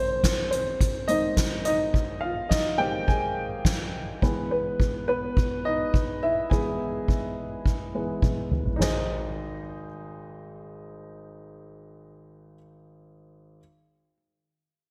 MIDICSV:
0, 0, Header, 1, 3, 480
1, 0, Start_track
1, 0, Key_signature, -4, "major"
1, 0, Tempo, 571973
1, 1626, Time_signature, 4, 2, 24, 8
1, 12504, End_track
2, 0, Start_track
2, 0, Title_t, "Upright piano"
2, 0, Program_c, 0, 0
2, 0, Control_c, 0, 64, 127
2, 0, Note_on_c, 0, 44, 40
2, 0, Note_on_c, 0, 51, 40
2, 0, Note_on_c, 0, 60, 47
2, 0, Note_on_c, 0, 72, 79
2, 394, Note_off_c, 0, 72, 0
2, 405, Note_off_c, 0, 60, 0
2, 427, Note_on_c, 0, 72, 65
2, 446, Note_on_c, 0, 60, 55
2, 884, Note_off_c, 0, 60, 0
2, 899, Note_off_c, 0, 44, 0
2, 901, Note_off_c, 0, 51, 0
2, 903, Note_on_c, 0, 75, 88
2, 912, Note_on_c, 0, 44, 38
2, 913, Note_on_c, 0, 51, 32
2, 921, Note_off_c, 0, 72, 0
2, 921, Note_on_c, 0, 60, 47
2, 921, Note_on_c, 0, 63, 57
2, 1126, Note_off_c, 0, 44, 0
2, 1127, Note_off_c, 0, 51, 0
2, 1131, Note_off_c, 0, 60, 0
2, 1360, Note_off_c, 0, 63, 0
2, 1373, Note_off_c, 0, 75, 0
2, 1385, Note_on_c, 0, 75, 81
2, 1402, Note_on_c, 0, 63, 69
2, 1831, Note_off_c, 0, 75, 0
2, 1840, Note_off_c, 0, 63, 0
2, 1852, Note_on_c, 0, 77, 75
2, 1872, Note_on_c, 0, 65, 54
2, 2092, Note_off_c, 0, 65, 0
2, 2093, Note_on_c, 0, 75, 65
2, 2105, Note_off_c, 0, 77, 0
2, 2112, Note_on_c, 0, 63, 52
2, 2331, Note_off_c, 0, 63, 0
2, 2334, Note_on_c, 0, 79, 89
2, 2339, Note_on_c, 0, 44, 46
2, 2346, Note_off_c, 0, 75, 0
2, 2347, Note_on_c, 0, 51, 41
2, 2349, Note_on_c, 0, 60, 53
2, 2349, Note_on_c, 0, 67, 61
2, 2561, Note_off_c, 0, 79, 0
2, 2569, Note_off_c, 0, 67, 0
2, 2580, Note_on_c, 0, 80, 70
2, 2593, Note_on_c, 0, 68, 58
2, 3027, Note_off_c, 0, 44, 0
2, 3030, Note_off_c, 0, 51, 0
2, 3031, Note_off_c, 0, 60, 0
2, 3267, Note_off_c, 0, 80, 0
2, 3273, Note_off_c, 0, 68, 0
2, 3540, Note_on_c, 0, 52, 39
2, 3546, Note_on_c, 0, 56, 36
2, 3548, Note_on_c, 0, 59, 47
2, 3554, Control_c, 0, 64, 0
2, 3694, Control_c, 0, 64, 127
2, 3775, Note_off_c, 0, 59, 0
2, 3786, Note_on_c, 0, 71, 66
2, 3787, Note_on_c, 0, 59, 46
2, 4230, Note_off_c, 0, 71, 0
2, 4231, Note_off_c, 0, 59, 0
2, 4262, Note_on_c, 0, 71, 85
2, 4271, Note_on_c, 0, 59, 57
2, 4713, Note_off_c, 0, 59, 0
2, 4743, Note_on_c, 0, 75, 83
2, 4755, Note_on_c, 0, 63, 51
2, 4756, Note_off_c, 0, 71, 0
2, 5188, Note_off_c, 0, 75, 0
2, 5195, Note_off_c, 0, 63, 0
2, 5227, Note_on_c, 0, 76, 75
2, 5240, Note_on_c, 0, 64, 59
2, 5426, Note_off_c, 0, 52, 0
2, 5429, Note_off_c, 0, 56, 0
2, 5453, Note_on_c, 0, 80, 66
2, 5454, Note_off_c, 0, 64, 0
2, 5457, Note_on_c, 0, 52, 40
2, 5465, Note_on_c, 0, 56, 32
2, 5469, Note_on_c, 0, 59, 44
2, 5469, Note_on_c, 0, 68, 56
2, 5471, Note_off_c, 0, 76, 0
2, 5778, Note_off_c, 0, 52, 0
2, 5782, Note_off_c, 0, 56, 0
2, 5784, Note_off_c, 0, 59, 0
2, 6668, Note_on_c, 0, 52, 31
2, 6670, Note_on_c, 0, 56, 33
2, 6673, Note_on_c, 0, 59, 35
2, 6864, Note_off_c, 0, 80, 0
2, 6872, Note_off_c, 0, 68, 0
2, 6881, Note_off_c, 0, 52, 0
2, 6882, Note_off_c, 0, 56, 0
2, 6884, Note_off_c, 0, 59, 0
2, 7353, Note_on_c, 0, 63, 55
2, 7375, Note_on_c, 0, 68, 51
2, 7384, Note_on_c, 0, 32, 50
2, 7392, Control_c, 0, 64, 0
2, 7395, Note_on_c, 0, 72, 51
2, 7410, Note_on_c, 0, 75, 64
2, 7562, Control_c, 0, 64, 127
2, 10514, Note_off_c, 0, 63, 0
2, 10526, Note_off_c, 0, 68, 0
2, 10530, Note_off_c, 0, 32, 0
2, 10535, Note_off_c, 0, 72, 0
2, 10543, Note_off_c, 0, 75, 0
2, 11411, Control_c, 0, 64, 0
2, 12504, End_track
3, 0, Start_track
3, 0, Title_t, "Drums"
3, 197, Note_on_c, 9, 38, 92
3, 199, Note_on_c, 9, 36, 97
3, 201, Note_on_c, 9, 42, 82
3, 281, Note_off_c, 9, 38, 0
3, 283, Note_off_c, 9, 36, 0
3, 285, Note_off_c, 9, 42, 0
3, 440, Note_on_c, 9, 42, 66
3, 524, Note_off_c, 9, 42, 0
3, 676, Note_on_c, 9, 36, 92
3, 679, Note_on_c, 9, 42, 59
3, 760, Note_off_c, 9, 36, 0
3, 763, Note_off_c, 9, 42, 0
3, 909, Note_on_c, 9, 42, 58
3, 993, Note_off_c, 9, 42, 0
3, 1147, Note_on_c, 9, 38, 83
3, 1150, Note_on_c, 9, 36, 96
3, 1150, Note_on_c, 9, 42, 83
3, 1231, Note_off_c, 9, 38, 0
3, 1234, Note_off_c, 9, 36, 0
3, 1234, Note_off_c, 9, 42, 0
3, 1384, Note_on_c, 9, 42, 69
3, 1468, Note_off_c, 9, 42, 0
3, 1628, Note_on_c, 9, 36, 87
3, 1712, Note_off_c, 9, 36, 0
3, 2103, Note_on_c, 9, 38, 86
3, 2107, Note_on_c, 9, 36, 84
3, 2187, Note_off_c, 9, 38, 0
3, 2190, Note_off_c, 9, 36, 0
3, 2585, Note_on_c, 9, 36, 85
3, 2669, Note_off_c, 9, 36, 0
3, 3062, Note_on_c, 9, 36, 92
3, 3063, Note_on_c, 9, 38, 93
3, 3146, Note_off_c, 9, 36, 0
3, 3147, Note_off_c, 9, 38, 0
3, 3545, Note_on_c, 9, 36, 89
3, 3628, Note_off_c, 9, 36, 0
3, 4025, Note_on_c, 9, 36, 85
3, 4109, Note_off_c, 9, 36, 0
3, 4505, Note_on_c, 9, 36, 89
3, 4589, Note_off_c, 9, 36, 0
3, 4984, Note_on_c, 9, 36, 91
3, 5068, Note_off_c, 9, 36, 0
3, 5466, Note_on_c, 9, 36, 86
3, 5549, Note_off_c, 9, 36, 0
3, 5945, Note_on_c, 9, 36, 77
3, 6029, Note_off_c, 9, 36, 0
3, 6424, Note_on_c, 9, 36, 79
3, 6508, Note_off_c, 9, 36, 0
3, 6902, Note_on_c, 9, 36, 86
3, 6903, Note_on_c, 9, 48, 37
3, 6986, Note_off_c, 9, 36, 0
3, 6987, Note_off_c, 9, 48, 0
3, 7144, Note_on_c, 9, 45, 63
3, 7228, Note_off_c, 9, 45, 0
3, 7264, Note_on_c, 9, 43, 63
3, 7348, Note_off_c, 9, 43, 0
3, 7389, Note_on_c, 9, 38, 75
3, 7389, Note_on_c, 9, 43, 76
3, 7389, Note_on_c, 9, 52, 54
3, 7473, Note_off_c, 9, 38, 0
3, 7473, Note_off_c, 9, 43, 0
3, 7473, Note_off_c, 9, 52, 0
3, 12504, End_track
0, 0, End_of_file